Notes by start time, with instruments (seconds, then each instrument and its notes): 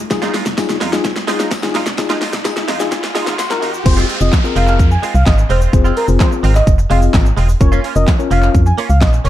Already playing: riser
0.10 fm bass F1, tine electric piano D#4 F4 G#4, muted clean electric guitar stroke, kick, snare, closed hi-hat, tambourine, shaker
0.22 clean electric guitar G#3 D#4 F4, snare, shaker
0.33 clean electric guitar G#3 D#4 F4, snare, open hi-hat, tambourine, shaker
0.45 fm bass F1, muted clean electric guitar stroke, snare, shaker
0.57 tine electric piano D#4 F4 G#4, muted clean electric guitar stroke, kick, snare, closed hi-hat, tambourine, shaker
0.69 fm bass F1, muted clean electric guitar stroke, snare, shaker
0.80 fm bass F2, clean electric guitar G#3 D#4 F4, snare, open hi-hat, tambourine, shaker
0.92 tine electric piano D#4 F4 G#4, muted clean electric guitar stroke, snare, shaker
1.04 fm bass F1, muted clean electric guitar stroke, kick, snare, closed hi-hat, tambourine, shaker
1.16 muted clean electric guitar stroke, snare, shaker
1.27 clean electric guitar G#3 D#4 F4, tine electric piano D#4 F4 G#4, snare, open hi-hat, tambourine, shaker
1.39 clean electric guitar G#3 D#4 F4, snare, shaker
1.51 kick, snare, closed hi-hat, tambourine, shaker
1.63 fm bass G#1, tine electric piano D#4 F4 G#4, muted clean electric guitar stroke, snare, shaker
1.74 fm bass D#1, clean electric guitar G#3 D#4 F4, snare, open hi-hat, tambourine, shaker
1.86 fm bass E1, muted clean electric guitar stroke, snare, shaker
1.98 fm bass F1, tine electric piano D#4 F4 G#4, muted clean electric guitar stroke, kick, snare, closed hi-hat, tambourine, shaker
2.10 clean electric guitar G#3 D#4 F4, snare, shaker
2.21 clean electric guitar G#3 D#4 F4, snare, open hi-hat, tambourine, shaker
2.33 fm bass F1, muted clean electric guitar stroke, snare, shaker
2.45 tine electric piano D#4 F4 G#4, muted clean electric guitar stroke, kick, snare, closed hi-hat, tambourine, shaker
2.56 fm bass F1, muted clean electric guitar stroke, snare, shaker
2.68 fm bass F2, clean electric guitar G#3 D#4 F4, tine electric piano F5, snare, open hi-hat, shaker
2.80 tine electric piano D#4 F4 G#4, muted clean electric guitar stroke, snare, shaker
2.91 fm bass F1, tine electric piano G#5, muted clean electric guitar stroke, kick, snare, closed hi-hat, tambourine, shaker
3.03 muted clean electric guitar stroke, snare, shaker
3.15 fm bass G#1, clean electric guitar G#3 D#4 F4, tine electric piano D#4 F4 G#4, snare, open hi-hat, tambourine, shaker
3.26 fm bass G#1, clean electric guitar G#3 D#4 F4, snare, shaker
3.39 tine electric piano C6, snare, closed hi-hat, tambourine, shaker
3.50 fm bass C2, tine electric piano D#4 F4 A#4, muted clean electric guitar stroke, snare, shaker
3.62 fm bass F2, clean electric guitar G#3 D#4 F4, open hi-hat, tambourine, shaker
3.73 muted clean electric guitar stroke, shaker
3.85 fm bass F1, tine electric piano C4 F4 G#4 C5, analog synth lead C5, muted clean electric guitar stroke, kick, closed hi-hat, crash, downlifter, shaker
3.97 clean electric guitar G#3 C4 F4, shaker
4.08 clean electric guitar G#3 C4 F4, open hi-hat, shaker
4.21 fm bass F1, tine electric piano C4 F4 G#4 D#5, analog synth lead D#5, muted clean electric guitar stroke, shaker
4.32 muted clean electric guitar stroke, kick, snare, clap, closed hi-hat, shaker
4.44 tine electric piano C4 F4 G#4 A#4, muted clean electric guitar stroke, shaker
4.56 fm bass F1, clean electric guitar G#3 C4 F4, analog synth lead F5, open hi-hat, shaker
4.67 muted clean electric guitar stroke, clap, shaker
4.79 fm bass F2, kick, closed hi-hat, shaker
4.91 analog synth lead G#5, muted clean electric guitar stroke, shaker
5.02 clean electric guitar G#3 C4 F4, open hi-hat, shaker
5.14 fm bass C2, analog synth lead F5, muted clean electric guitar stroke, shaker
5.26 fm bass G#1, analog synth lead D#5, muted clean electric guitar stroke, kick, snare, clap, closed hi-hat, shaker
5.38 muted clean electric guitar stroke, shaker
5.49 fm bass E1, clean electric guitar G#3 C4 F4, analog synth lead C5, open hi-hat, shaker
5.61 clean electric guitar G#3 C4 F4, shaker
5.73 fm bass F1, tine electric piano C4 F4 G#4 C5, muted clean electric guitar stroke, kick, closed hi-hat, shaker
5.84 clean electric guitar G#3 C4 F4, shaker
5.96 clean electric guitar G#3 C4 F4, analog synth lead A#4, open hi-hat, shaker
6.08 fm bass F1, tine electric piano C4 F4 G#4 C5, muted clean electric guitar stroke, shaker
6.20 analog synth lead C5, muted clean electric guitar stroke, kick, snare, clap, closed hi-hat, shaker
6.32 muted clean electric guitar stroke, shaker
6.43 fm bass G#1, clean electric guitar G#3 C4 F4, open hi-hat, shaker
6.55 analog synth lead D#5, muted clean electric guitar stroke, clap, shaker
6.67 fm bass F1, kick, closed hi-hat, shaker
6.78 muted clean electric guitar stroke, shaker
6.90 fm bass F1, clean electric guitar G#3 C4 F4, tine electric piano C4 F4 G#4 D#5, analog synth lead F5, open hi-hat, shaker
7.02 muted clean electric guitar stroke, shaker
7.14 fm bass G#1, kick, snare, clap, closed hi-hat, shaker
7.25 muted clean electric guitar stroke, shaker
7.37 fm bass E1, clean electric guitar G#3 C4 F4, open hi-hat, shaker
7.49 muted clean electric guitar stroke, shaker
7.60 fm bass F1, tine electric piano C#4 F4 A#4 C#5, analog synth lead C#5, muted clean electric guitar stroke, kick, closed hi-hat, shaker
7.72 clean electric guitar A#3 C#4 F4, shaker
7.84 clean electric guitar A#3 C#4 F4, open hi-hat, shaker
7.96 fm bass F1, tine electric piano C#4 F4 A#4 D#5, analog synth lead D#5, muted clean electric guitar stroke, shaker
8.07 muted clean electric guitar stroke, kick, snare, clap, closed hi-hat, shaker
8.19 tine electric piano C#4 F4 A#4 C#5, muted clean electric guitar stroke, shaker
8.31 fm bass F1, clean electric guitar A#3 C#4 F4, analog synth lead F5, open hi-hat, shaker
8.43 muted clean electric guitar stroke, clap, shaker
8.55 fm bass F2, kick, closed hi-hat, shaker
8.66 analog synth lead G#5, muted clean electric guitar stroke, shaker
8.78 clean electric guitar A#3 C#4 F4, open hi-hat, shaker
8.89 fm bass C#2, analog synth lead F5, muted clean electric guitar stroke, shaker
9.01 fm bass A#1, analog synth lead D#5, kick, snare, clap, closed hi-hat, shaker
9.13 muted clean electric guitar stroke, shaker
9.24 fm bass E1, clean electric guitar A#3 C#4 F4, analog synth lead C#5, open hi-hat, shaker